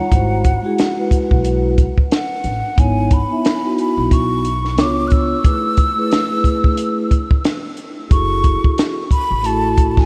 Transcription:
0.00 1.12 F#5 medium
0.10 0.54 G#1 loud
0.10 0.42 G#3 medium
0.10 0.42 E4 medium
0.10 0.43 F#4 medium
0.10 0.44 C5 medium
0.10 kick medium
0.10 closed hi-hat medium
0.44 kick medium
0.44 closed hi-hat medium
0.62 0.82 G#3 medium
0.62 0.82 E4 medium
0.62 0.83 F#4 medium
0.62 0.84 G#4 medium
0.78 snare loud
0.78 closed hi-hat medium
0.96 1.76 G#3 medium
0.96 1.77 E4 medium
0.96 1.77 F#4 medium
0.96 1.78 B4 medium
1.11 kick medium
1.11 closed hi-hat medium
1.31 1.85 B1 medium
1.31 kick medium
1.44 closed hi-hat medium
1.78 kick medium
1.78 closed hi-hat medium
1.98 kick medium
2.11 2.81 F#5 medium
2.11 snare loud
2.11 closed hi-hat medium
2.44 2.60 A1 medium
2.44 closed hi-hat medium
2.76 3.21 G#1 loud
2.76 3.08 B3 medium
2.76 3.09 D#4 medium
2.76 3.09 E4 medium
2.76 3.10 C#5 medium
2.76 3.15 G#5 medium
2.76 kick loud
2.76 closed hi-hat medium
3.11 3.79 B5 medium
3.11 kick medium
3.11 closed hi-hat medium
3.29 3.48 B3 medium
3.29 3.49 D#4 medium
3.29 3.49 E4 medium
3.29 3.50 E5 medium
3.45 snare loud
3.45 closed hi-hat medium
3.62 4.43 B3 medium
3.62 4.43 D#4 medium
3.62 4.44 E4 medium
3.62 4.44 F#4 medium
3.78 4.10 B5 medium
3.78 closed hi-hat medium
3.97 4.78 B1 medium
4.11 4.80 C#6 loud
4.11 kick medium
4.11 closed hi-hat medium
4.45 closed hi-hat medium
4.65 snare soft
4.76 5.32 C#2 medium
4.76 5.32 B3 medium
4.76 5.33 D4 medium
4.76 5.34 F4 medium
4.76 5.34 C#5 medium
4.76 5.09 D6 loud
4.76 snare loud
4.76 closed hi-hat medium
5.07 5.13 F#6 medium
5.07 closed hi-hat medium
5.12 7.45 E6 loud
5.12 kick medium
5.43 5.75 A3 medium
5.43 5.76 E4 medium
5.43 5.76 G#4 medium
5.43 5.77 B4 medium
5.43 kick loud
5.43 closed hi-hat medium
5.77 kick medium
5.77 closed hi-hat medium
5.95 6.15 A3 medium
5.95 6.15 E4 medium
5.95 6.16 G#4 medium
5.95 6.17 B4 medium
6.11 snare loud
6.11 closed hi-hat medium
6.29 7.09 A3 medium
6.29 7.10 E4 medium
6.29 7.11 G#4 medium
6.29 7.11 B4 medium
6.44 kick medium
6.44 closed hi-hat medium
6.64 kick medium
6.77 closed hi-hat medium
7.11 kick medium
7.11 closed hi-hat medium
7.31 kick medium
7.45 snare loud
7.45 closed hi-hat medium
7.77 closed hi-hat medium
8.09 8.54 F#1 medium
8.09 8.96 E4 medium
8.09 8.96 F#4 medium
8.09 8.95 G#4 medium
8.09 8.97 A4 medium
8.09 8.74 C#6 loud
8.09 kick loud
8.09 closed hi-hat medium
8.44 kick medium
8.44 closed hi-hat medium
8.64 kick medium
8.78 snare loud
8.78 closed hi-hat medium
9.11 9.47 B5 loud
9.11 kick medium
9.11 closed hi-hat medium
9.31 10.06 A1 medium
9.42 10.06 A3 medium
9.42 10.06 E4 medium
9.42 10.06 F#4 medium
9.42 9.53 G#4 medium
9.42 9.91 A5 loud
9.42 closed hi-hat medium
9.52 10.06 A4 medium
9.77 kick medium
9.77 closed hi-hat medium
9.91 10.01 A5 medium
9.97 10.06 G#5 medium
9.97 kick medium
9.97 snare soft

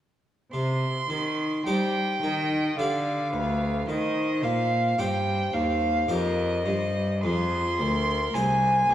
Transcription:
0.53 1.06 C3 medium
0.53 1.06 C3 soft
0.53 1.62 C6 loud
1.09 1.65 D#3 medium
1.09 1.62 D#3 medium
1.66 2.21 G3 medium
1.66 2.19 G3 medium
1.66 2.47 D#4 soft
1.66 2.47 G4 soft
1.66 2.19 C5 medium
1.66 2.48 C5 soft
1.66 2.76 G5 loud
2.23 2.77 D#3 medium
2.23 2.75 D#3 medium
2.23 2.80 D#5 medium
2.78 3.34 D3 medium
2.78 3.30 D3 medium
2.78 3.85 D4 soft
2.78 3.85 G4 soft
2.78 3.86 B4 soft
2.78 3.33 D5 medium
2.78 3.86 F5 medium
3.33 3.88 D2 medium
3.33 3.85 D2 medium
3.33 3.87 B4 medium
3.88 4.45 D#3 medium
3.88 4.40 D#3 medium
3.88 4.97 C5 medium
3.88 4.46 D#5 medium
4.43 4.99 A#2 medium
4.43 4.95 A#2 medium
4.43 5.01 F5 medium
4.98 5.50 G2 medium
4.98 5.54 G2 medium
4.98 5.79 C4 soft
4.98 5.79 G4 soft
4.98 5.79 C5 soft
4.98 6.09 C5 medium
4.98 5.55 G5 medium
5.54 6.06 D#2 medium
5.54 6.09 D#2 medium
5.54 6.12 F5 medium
6.08 6.62 F2 medium
6.08 6.68 F2 medium
6.08 6.92 C4 soft
6.08 6.92 G4 soft
6.08 6.66 A#4 medium
6.08 6.92 C5 soft
6.08 7.23 D#5 medium
6.66 7.20 G2 medium
6.66 7.26 G2 medium
6.66 7.23 C5 medium
7.23 7.76 F2 soft
7.23 7.82 F2 medium
7.23 7.81 G#4 medium
7.23 8.36 C6 loud
7.79 8.31 D2 medium
7.79 8.34 D2 medium
7.79 8.36 A#4 medium
8.34 8.88 C2 medium
8.34 8.86 C2 medium
8.34 8.75 C4 soft
8.34 8.94 G#4 soft
8.34 8.91 C5 medium
8.34 8.94 C5 medium
8.34 8.94 G#5 loud
8.89 8.94 D#2 medium
8.89 8.94 G#4 medium

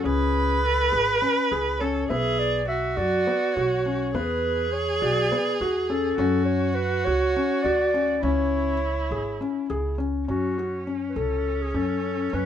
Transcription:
0.04 0.89 C#2 medium
0.04 0.54 C#4 medium
0.04 0.66 G#4 medium
0.04 1.82 B4 loud
0.64 0.95 A4 medium
0.92 1.20 G#1 medium
0.92 1.17 G#4 medium
0.92 1.52 B4 medium
1.22 1.46 C#4 medium
1.51 2.07 C#2 medium
1.51 1.76 G#4 medium
1.79 2.06 C#4 medium
1.79 2.08 A4 medium
1.79 2.11 C#5 medium
2.09 2.94 B1 medium
2.09 2.59 B3 medium
2.09 2.64 G#4 loud
2.09 2.40 E5 loud
2.39 2.68 D5 medium
2.68 4.10 F#4 loud
2.68 2.98 E5 medium
2.97 3.25 F#2 medium
2.97 3.22 F#4 medium
2.97 3.56 D5 medium
3.27 3.52 B3 medium
3.54 4.11 B1 medium
3.54 3.81 F#4 medium
3.54 4.17 C#5 medium
3.86 4.10 C#4 medium
4.14 4.98 E2 medium
4.14 4.64 B3 medium
4.14 6.15 G#4 loud
4.14 4.74 B4 medium
4.73 5.04 C#5 medium
5.02 5.29 B1 medium
5.02 5.27 F#4 medium
5.02 5.60 D5 medium
5.32 5.56 B3 medium
5.61 6.16 E2 medium
5.61 5.86 F#4 medium
5.89 6.14 C#4 medium
5.89 6.44 A4 medium
6.18 7.02 F#2 medium
6.18 6.68 C#4 medium
6.18 8.19 F#4 loud
6.45 6.76 C#5 medium
6.75 7.06 B4 medium
7.05 7.34 C#2 medium
7.05 7.32 F#4 medium
7.05 7.64 C#5 medium
7.36 7.61 C#4 medium
7.63 8.20 D2 medium
7.63 7.90 F#4 medium
7.63 8.22 D5 loud
7.94 8.19 C#4 medium
8.22 9.07 C#2 medium
8.22 8.73 C#4 medium
8.22 9.94 E4 medium
8.22 9.66 C#5 medium
9.11 9.39 G#1 medium
9.11 9.36 G#4 medium
9.41 9.65 C#4 medium
9.70 10.25 C#2 medium
9.70 9.94 G#4 medium
9.98 10.23 C#4 medium
10.28 11.17 F#2 medium
10.28 12.46 C#4 medium
10.28 10.53 C#4 medium
10.28 10.83 F#4 medium
10.58 10.83 F#4 medium
10.87 11.12 C#4 medium
11.09 11.18 B4 soft
11.16 11.71 C#2 medium
11.16 11.65 A4 medium
11.16 11.63 A4 medium
11.61 11.77 G#4 medium
11.74 12.30 F#2 medium
11.74 12.24 C#4 medium
11.74 12.36 A4 medium
12.33 12.46 F#2 medium
12.33 12.46 C#4 medium
12.33 12.46 B4 medium

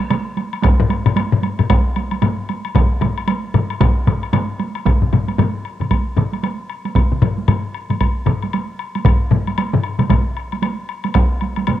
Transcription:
0.00 taiko high soft
0.10 taiko mid medium
0.10 taiko high medium
0.10 high woodblock medium
0.26 taiko high soft
0.37 taiko high medium
0.37 high woodblock soft
0.53 taiko high soft
0.53 high woodblock soft
0.62 taiko loud
0.62 taiko high medium
0.62 high woodblock medium
0.79 taiko low-mid loud
0.79 taiko high soft
0.90 taiko high medium
0.90 high woodblock soft
1.06 taiko low-mid loud
1.06 taiko high soft
1.06 high woodblock medium
1.16 taiko high medium
1.16 high woodblock medium
1.32 taiko low-mid loud
1.32 taiko high soft
1.43 taiko high medium
1.43 high woodblock soft
1.59 taiko low-mid medium
1.59 taiko high soft
1.59 high woodblock soft
1.70 taiko loud
1.70 taiko high medium
1.70 high woodblock medium
1.86 taiko high soft
1.96 taiko high medium
1.96 high woodblock soft
2.11 taiko high soft
2.11 high woodblock soft
2.22 taiko low-mid medium
2.22 taiko high medium
2.22 high woodblock medium
2.39 taiko high soft
2.49 taiko high soft
2.49 high woodblock soft
2.65 taiko high soft
2.65 high woodblock soft
2.75 taiko medium
2.75 taiko low-mid loud
2.75 taiko mid loud
2.75 taiko high medium
2.75 high woodblock medium
2.92 taiko high soft
3.01 taiko low-mid loud
3.01 taiko mid medium
3.01 taiko high medium
3.01 high woodblock soft
3.18 taiko high soft
3.18 high woodblock soft
3.28 taiko high medium
3.28 high woodblock medium
3.43 taiko high soft
3.54 taiko low-mid medium
3.54 taiko mid medium
3.54 taiko high soft
3.54 high woodblock soft
3.70 taiko high soft
3.70 high woodblock soft
3.80 taiko loud
3.80 taiko low-mid loud
3.80 taiko mid loud
3.80 taiko high medium
3.80 high woodblock medium
3.97 taiko high soft
4.07 taiko low-mid medium
4.07 taiko mid loud
4.07 taiko high medium
4.07 high woodblock soft
4.23 high woodblock soft
4.33 taiko low-mid medium
4.33 taiko mid loud
4.33 taiko high medium
4.33 high woodblock medium
4.60 taiko high medium
4.60 high woodblock soft
4.75 taiko high soft
4.75 high woodblock soft
4.85 taiko medium
4.85 taiko low-mid medium
4.85 taiko mid medium
4.85 taiko high medium
4.85 high woodblock soft
5.02 taiko low-mid medium
5.02 taiko mid medium
5.12 taiko low-mid medium
5.12 taiko mid medium
5.12 taiko high soft
5.12 high woodblock soft
5.28 taiko high soft
5.28 high woodblock soft
5.38 taiko low-mid medium
5.38 taiko mid medium
5.38 taiko high medium
5.38 high woodblock soft
5.65 high woodblock soft
5.80 taiko low-mid medium
5.80 taiko mid medium
5.80 high woodblock soft
5.91 taiko medium
5.91 taiko high medium
5.91 high woodblock soft
6.17 taiko low-mid medium
6.17 taiko mid loud
6.17 high woodblock soft
6.33 taiko high soft
6.33 high woodblock soft
6.43 taiko high medium
6.43 high woodblock soft
6.69 high woodblock soft
6.85 taiko high soft
6.85 high woodblock soft
6.95 taiko medium
6.95 taiko low-mid medium
6.95 taiko mid medium
6.95 taiko high medium
6.95 high woodblock soft
7.12 taiko low-mid medium
7.12 taiko mid medium
7.22 taiko low-mid loud
7.22 taiko mid medium
7.22 taiko high soft
7.22 high woodblock soft
7.38 taiko high soft
7.48 taiko low-mid loud
7.48 taiko mid medium
7.48 taiko high medium
7.48 high woodblock medium
7.74 high woodblock soft
7.90 taiko low-mid medium
7.90 taiko mid medium
7.90 taiko high soft
7.90 high woodblock soft
8.01 taiko medium
8.01 taiko high soft
8.01 high woodblock medium
8.26 taiko low-mid medium
8.26 taiko mid loud
8.26 high woodblock soft
8.42 taiko high soft
8.42 high woodblock soft
8.53 taiko high soft
8.53 high woodblock soft
8.79 high woodblock soft
8.95 taiko high soft
8.95 high woodblock soft
9.05 taiko medium
9.05 taiko low-mid medium
9.05 taiko mid medium
9.05 taiko high soft
9.05 high woodblock medium
9.31 taiko low-mid loud
9.31 taiko mid medium
9.31 taiko high soft
9.47 taiko high soft
9.47 high woodblock soft
9.58 taiko high medium
9.58 high woodblock medium
9.73 taiko low-mid medium
9.73 taiko mid medium
9.83 high woodblock soft
9.99 taiko low-mid medium
9.99 taiko mid medium
9.99 taiko high soft
9.99 high woodblock soft
10.10 taiko medium
10.10 taiko low-mid medium
10.10 taiko mid medium
10.10 taiko high medium
10.10 high woodblock medium
10.37 high woodblock soft
10.52 taiko high soft
10.52 high woodblock soft
10.62 taiko high medium
10.62 high woodblock medium
10.89 high woodblock soft
11.04 taiko high soft
11.04 high woodblock soft
11.14 taiko medium
11.14 taiko high medium
11.14 high woodblock medium
11.41 taiko high soft
11.41 high woodblock soft
11.56 taiko high medium
11.56 high woodblock soft
11.67 taiko low-mid medium
11.67 taiko mid medium
11.67 taiko high medium
11.67 high woodblock medium

